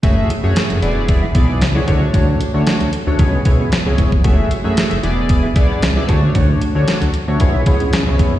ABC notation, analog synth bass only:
X:1
M:4/4
L:1/16
Q:1/4=114
K:F#m
V:1 name="Analog synth bass" clef=bass
F,,,2 z F,, z F,,, E,,,4 B,,,2 C,,2 D,,2 | D,,2 z D, z D,, z D,, C,,2 B,,,2 z C,, E,,, ^E,,, | F,,,2 z F,, z F,,, E,,,4 B,,,2 C,,2 D,,2 | D,,2 z D, z D,, z D,, C,, B,,, C,, C,, C, C,, z ^E,,, |]